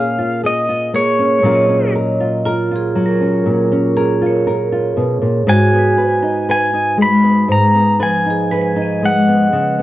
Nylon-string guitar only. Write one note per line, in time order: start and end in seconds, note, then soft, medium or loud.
0.00 1.40 A#2 medium
0.00 0.92 A#3 medium
0.00 1.18 C#4 medium
0.00 0.17 F4 medium
0.00 0.42 G#4 medium
0.19 0.68 F4 medium
0.44 1.45 G#4 medium
0.69 1.40 F4 medium
0.94 1.39 A#3 medium
1.19 1.39 C#4 medium
1.43 3.45 A#2 medium
1.43 2.94 F#3 medium
1.43 1.68 C#4 medium
1.43 2.19 F4 medium
1.43 1.94 A#4 medium
1.69 3.20 C#4 soft
1.95 2.45 A#4 medium
2.20 2.70 F4 medium
2.46 3.96 A#4 medium
2.71 4.20 F4 soft
2.95 5.47 F#3 medium
3.21 3.71 C#4 soft
3.46 4.96 A#2 medium
3.72 5.42 C#4 medium
3.97 4.46 A#4 medium
4.22 4.71 F4 medium
4.47 5.42 A#4 medium
4.72 5.42 F4 medium
4.97 5.21 B2 medium
5.21 5.46 A#2 medium
5.47 7.47 G#2 medium
5.73 7.23 B3 medium
5.98 6.49 B4 medium
6.22 6.72 D#4 soft
6.49 7.98 B4 medium
6.74 8.25 D#4 medium
6.97 9.02 G#3 medium
7.24 7.73 B3 medium
7.48 9.46 G#2 medium
7.74 9.27 B3 medium
8.00 8.51 B4 medium
8.26 8.75 D#4 soft
8.52 9.47 B4 medium
8.76 9.53 D#4 medium
9.02 9.82 G#3 medium
9.28 9.78 B3 medium
9.53 9.82 C#3 medium
9.79 9.82 B3 medium